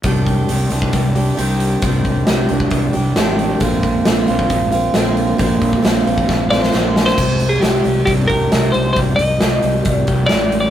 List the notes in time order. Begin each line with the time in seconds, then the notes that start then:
0.03 C2 C3 D#3 G3 D4 G4, kick, open hi-hat
0.27 kick, open hi-hat
0.48 C2 D#3 G3 D4 G4, open hi-hat
0.70 C2 G3 D4 G4, open hi-hat
0.82 kick
0.93 C2, kick, open hi-hat
1.15 G3 D4 G4, open hi-hat
1.37 C2 C3 D#3 G3 D4 G4, open hi-hat
1.60 open hi-hat
1.82 C2 C3 D#3 G3 D4 G4, kick, open hi-hat
2.05 C2, kick, open hi-hat
2.27 C2 D#3 G3 D4 G4, snare, open hi-hat
2.49 C2 D4 G4, open hi-hat
2.53 G3
2.60 kick
2.71 C2, kick, open hi-hat
2.93 C2 G3 D4 G4, open hi-hat
3.16 A1 C3 D#3 G3 D4 G4, snare, open hi-hat
3.39 open hi-hat
3.60 A#1 A#2 D3 A#3 C4 F4, kick, open hi-hat
3.83 kick, open hi-hat
4.05 A#1 D3 A#3 C4 F4, snare, open hi-hat
4.27 A#1 A#3 C4 F4, open hi-hat
4.39 kick
4.50 A#1, kick, open hi-hat
4.72 A#3 C4 F4, open hi-hat
4.94 A#1 A#2 D3 A#3 C4, snare, open hi-hat
4.98 F4
5.17 open hi-hat
5.38 A#1 A#2 D3 A#3 C4 F4, kick, open hi-hat
5.62 A#1, kick, open hi-hat
5.73 kick
5.83 A#1 D3 A#3 C4 F4, snare, open hi-hat
6.05 A#1 A#3 C4 F4, open hi-hat
6.18 kick
6.29 A#1, kick, snare
6.50 A#1 A#3 C4 F4 D5, snare
6.62 C5, snare
6.72 A#1 A#2 D3 A#3 C4 F4, snare
6.96 snare
7.06 C5, snare
7.18 C2 C3, kick, crash
7.40 D#3, open hi-hat
7.49 G#4
7.61 C2 D#3 G4, snare, open hi-hat
7.84 C2 G3, open hi-hat
8.05 C2 D4 G4, kick, open hi-hat
8.28 C2 G4 A#4, kick, open hi-hat
8.52 C2 G3, snare, open hi-hat
8.72 C2 D#3 C5, open hi-hat
8.93 C2 C3 C5, kick, open hi-hat
9.16 C2 D#3 D#5, open hi-hat
9.41 C2 D#3, snare, open hi-hat
9.62 C2 G3, open hi-hat
9.85 C2, kick, open hi-hat
9.93 D5
10.07 C2 G4, kick, open hi-hat
10.26 G3 D5, snare, open hi-hat
10.31 A1
10.52 D#3, open hi-hat
10.60 D5